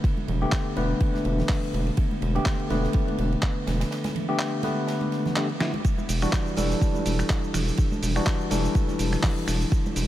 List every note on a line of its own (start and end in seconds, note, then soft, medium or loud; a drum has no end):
0.00 0.38 D3 medium
0.00 0.38 A3 medium
0.00 0.38 B3 medium
0.00 0.39 B4 medium
0.00 kick loud
0.05 ride medium
0.17 high conga medium
0.28 0.45 E1 loud
0.28 ride medium
0.28 low conga medium
0.41 0.74 D3 medium
0.41 0.74 A3 medium
0.41 0.74 B3 medium
0.41 0.74 G4 loud
0.52 kick loud
0.52 snare loud
0.52 clap loud
0.52 ride medium
0.76 0.94 E1 medium
0.76 2.32 D3 medium
0.76 2.32 A3 medium
0.76 2.32 B3 medium
0.76 2.32 B4 medium
0.76 ride medium
0.76 high conga medium
1.00 kick loud
1.00 ride medium
1.14 snare soft
1.14 high conga medium
1.25 1.42 E1 loud
1.25 ride medium
1.38 snare soft
1.38 low conga medium
1.49 kick loud
1.49 snare loud
1.49 clap loud
1.49 open hi-hat medium
1.62 snare soft
1.73 1.91 E1 medium
1.73 ride medium
1.87 ride soft
1.97 kick loud
1.97 ride medium
2.11 high conga medium
2.22 2.39 E1 loud
2.22 ride medium
2.35 2.68 D3 medium
2.35 2.68 A3 medium
2.35 2.68 B3 medium
2.35 2.68 G4 loud
2.35 ride soft
2.46 kick loud
2.46 snare loud
2.46 clap loud
2.46 ride medium
2.59 ride soft
2.70 2.87 E1 medium
2.70 4.25 D3 medium
2.70 4.25 A3 medium
2.70 4.26 B3 medium
2.70 4.26 B4 medium
2.70 snare soft
2.70 ride medium
2.70 high conga medium
2.84 snare soft
2.93 kick loud
2.93 ride medium
3.08 ride soft
3.08 high conga medium
3.18 3.36 E1 loud
3.18 ride medium
3.32 ride soft
3.42 kick medium
3.42 snare soft
3.42 clap loud
3.42 ride medium
3.67 3.84 E1 medium
3.67 snare loud
3.67 ride medium
3.67 low conga medium
3.80 snare loud
3.80 ride medium
3.91 snare loud
3.91 ride medium
4.04 snare loud
4.04 ride medium
4.04 high conga medium
4.15 ride medium
4.15 low conga medium
4.29 4.61 D3 medium
4.29 4.61 A3 medium
4.29 4.61 B3 medium
4.29 4.61 G4 loud
4.39 snare loud
4.39 clap loud
4.39 ride medium
4.63 5.34 D3 medium
4.63 5.34 A3 medium
4.63 5.34 B3 medium
4.63 5.34 B4 medium
4.63 snare soft
4.63 ride medium
4.63 high conga medium
4.87 snare loud
4.87 ride medium
5.01 ride soft
5.01 high conga medium
5.12 snare soft
5.12 ride medium
5.26 snare soft
5.26 low conga medium
5.36 5.47 D3 medium
5.36 5.47 A3 medium
5.36 5.47 B3 medium
5.36 5.47 G4 medium
5.36 clap loud
5.36 ride medium
5.49 ride soft
5.60 5.71 D3 medium
5.60 5.71 A3 medium
5.60 5.71 B3 medium
5.60 5.71 E4 medium
5.60 snare medium
5.60 ride medium
5.74 ride soft
5.74 high conga medium
5.84 kick loud
5.84 ride medium
5.84 shaker soft
5.98 high conga medium
5.98 shaker soft
6.09 6.26 E1 loud
6.09 open hi-hat loud
6.09 ride medium
6.09 shaker medium
6.21 6.55 E3 medium
6.21 6.55 G3 medium
6.21 6.55 D4 medium
6.21 6.55 F#4 loud
6.21 finger snap medium
6.21 ride soft
6.21 shaker soft
6.33 kick loud
6.33 snare loud
6.33 clap loud
6.33 ride medium
6.33 shaker soft
6.46 ride soft
6.46 shaker soft
6.57 6.74 E1 medium
6.57 8.12 E3 medium
6.57 8.13 G3 medium
6.57 8.13 D4 medium
6.57 8.13 A4 medium
6.57 open hi-hat loud
6.57 ride medium
6.57 high conga medium
6.57 shaker medium
6.70 snare medium
6.70 shaker soft
6.82 kick loud
6.82 ride medium
6.82 shaker soft
6.95 ride soft
6.95 high conga medium
6.95 shaker soft
7.06 7.23 E1 loud
7.06 snare soft
7.06 open hi-hat loud
7.06 ride medium
7.06 shaker medium
7.19 finger snap medium
7.19 shaker soft
7.30 kick loud
7.30 snare loud
7.30 clap loud
7.30 ride medium
7.30 shaker soft
7.44 shaker soft
7.54 7.71 E1 medium
7.54 finger snap medium
7.54 open hi-hat loud
7.54 ride medium
7.54 low conga medium
7.54 shaker medium
7.68 shaker soft
7.77 kick loud
7.77 ride medium
7.77 shaker soft
7.92 high conga medium
7.92 shaker soft
8.02 8.20 E1 loud
8.02 open hi-hat loud
8.02 ride medium
8.02 low conga medium
8.02 shaker medium
8.16 8.48 E3 medium
8.16 8.48 G3 medium
8.16 8.48 D4 medium
8.16 8.48 F#4 loud
8.16 finger snap medium
8.16 shaker soft
8.27 kick loud
8.27 snare loud
8.27 clap loud
8.27 ride medium
8.27 shaker soft
8.41 shaker soft
8.50 8.68 E1 medium
8.50 10.06 E3 medium
8.50 10.06 G3 medium
8.50 10.06 D4 medium
8.50 10.06 A4 medium
8.50 open hi-hat loud
8.50 ride medium
8.50 high conga medium
8.50 shaker medium
8.65 shaker soft
8.75 kick loud
8.75 ride medium
8.75 shaker soft
8.87 snare soft
8.87 high conga medium
8.87 shaker soft
8.99 9.16 E1 loud
8.99 open hi-hat loud
8.99 ride medium
8.99 shaker medium
9.13 finger snap medium
9.13 snare medium
9.13 low conga medium
9.13 shaker soft
9.23 kick loud
9.23 snare loud
9.23 clap loud
9.23 open hi-hat medium
9.23 shaker soft
9.37 snare soft
9.37 shaker soft
9.48 9.65 E1 medium
9.48 finger snap medium
9.48 open hi-hat loud
9.48 ride medium
9.48 shaker medium
9.61 ride soft
9.61 shaker soft
9.72 kick loud
9.72 ride medium
9.72 shaker soft
9.86 high conga medium
9.86 shaker soft
9.96 10.07 E1 loud
9.96 open hi-hat loud
9.96 ride medium
9.96 shaker medium